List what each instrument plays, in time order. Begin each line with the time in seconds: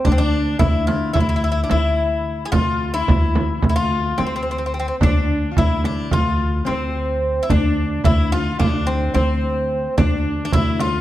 0.05 upright bass D2, bouzouki D4, sitar D4, frame drum
0.12 bouzouki C4
0.18 bouzouki D4, sitar D4
0.59 upright bass D2, bouzouki E4, sitar E4, frame drum
0.87 bouzouki F4, frame drum
1.13 upright bass D2, bouzouki E4, sitar E4, frame drum
1.20 bouzouki E4
1.29 bouzouki E4
1.36 bouzouki E4
1.44 bouzouki E4
1.52 bouzouki E4
1.64 bouzouki D4
1.70 upright bass D2, bouzouki E4, sitar E4, frame drum
2.45 bouzouki G#4
2.52 upright bass D2, bouzouki F4, sitar F4, frame drum
2.94 bouzouki E4, sitar E4
3.08 upright bass D2, frame drum
3.35 frame drum
3.62 upright bass D2, frame drum
3.69 bouzouki E4
3.76 bouzouki F4, sitar F4
4.18 upright bass D2, bouzouki C4, sitar C4, frame drum
4.27 bouzouki C4
4.36 bouzouki C4
4.43 bouzouki C4
4.51 bouzouki C4
4.58 bouzouki C4
4.66 bouzouki C4
4.74 bouzouki C4
4.79 bouzouki C4
4.88 bouzouki C4
5.01 upright bass D2, sitar D4, bouzouki D4, frame drum
5.51 sitar F4
5.57 upright bass D2, sitar E4, bouzouki E4, frame drum
5.84 bouzouki D4, frame drum
6.11 upright bass D2, sitar F4, bouzouki F4, frame drum
6.65 upright bass D2, sitar C4, bouzouki C4, frame drum
7.43 bouzouki E4
7.50 upright bass D2, sitar D4, bouzouki D4, frame drum
8.04 upright bass D2, sitar E4, bouzouki E4, frame drum
8.32 bouzouki F4, sitar F4, frame drum
8.59 upright bass D2, sitar D4, bouzouki D4, frame drum
8.87 bouzouki C4
9.14 upright bass D2, sitar C4, bouzouki C4, frame drum
9.98 upright bass D2, sitar D4, bouzouki D4, frame drum
10.45 bouzouki D4
10.53 upright bass D2, bouzouki E4, sitar E4, frame drum
10.80 bouzouki F4, sitar F4, frame drum